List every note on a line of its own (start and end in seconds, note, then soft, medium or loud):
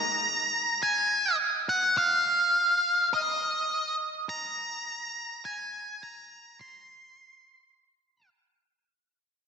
0.00 0.86 A#5 medium
0.83 1.36 G#5 medium
1.69 1.96 F#5 medium
1.98 3.09 F5 medium
3.14 3.96 D#5 soft
4.29 5.47 A#5 medium
5.45 6.04 G#5 medium
6.03 6.60 A#5 medium
6.61 8.29 C6 soft